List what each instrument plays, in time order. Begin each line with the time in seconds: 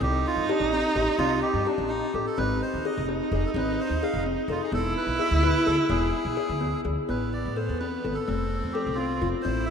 0.01 upright bass C2, kalimba C4, viola D#4, melodica G4
0.27 melodica F4
0.37 upright bass G2
0.49 melodica D4, kalimba G4
0.60 upright bass A1
0.72 kalimba C4, melodica D#4
0.95 upright bass A1, kalimba G4
1.18 upright bass C2, kalimba C4, melodica F4
1.42 melodica G4
1.54 upright bass G2
1.66 melodica D4, kalimba G4
1.78 upright bass A1
1.89 kalimba C4, melodica D#4
2.13 upright bass A1, melodica G4, kalimba A4
2.26 melodica A4
2.37 upright bass G#1, kalimba C4, viola D#4, melodica B4
2.62 melodica C5
2.74 upright bass D#2
2.85 kalimba G#4, melodica D#5
2.97 upright bass F1
3.09 kalimba C4
3.32 upright bass F1, kalimba G#4, melodica G#4
3.46 melodica A4
3.54 upright bass G#1, kalimba C4, melodica B4
3.81 melodica C5
3.90 upright bass D#2
4.03 kalimba G#4, melodica F5
4.14 upright bass F1
4.26 kalimba C4
4.48 upright bass F1, melodica F4, kalimba A4
4.63 melodica G#4
4.72 upright bass E1, kalimba B3, viola E4, melodica A4
4.97 melodica B4
5.07 upright bass B1
5.19 kalimba G#4, melodica E5
5.31 upright bass D2
5.43 kalimba E4, melodica B4
5.66 upright bass D2, kalimba G#4, melodica A4
5.89 upright bass E1, kalimba B3, melodica G#4
6.25 upright bass B1
6.37 kalimba G#4
6.49 upright bass D2
6.61 kalimba B3
6.85 upright bass D2, kalimba G#4
7.08 upright bass A1, viola B3, kalimba B3, melodica B4
7.33 melodica D5
7.46 upright bass A2
7.56 kalimba A4, melodica C5
7.69 upright bass E2
7.80 kalimba C4, melodica B4
8.04 upright bass G1, kalimba A4
8.14 melodica A4
8.28 upright bass F1, kalimba A3, viola C4
8.63 upright bass F2
8.72 melodica G4, kalimba A4
8.87 upright bass C2
8.95 kalimba C4, melodica F4
9.21 upright bass F1, kalimba F4
9.42 upright bass A1, kalimba C4, viola E4, melodica C5
9.66 melodica E5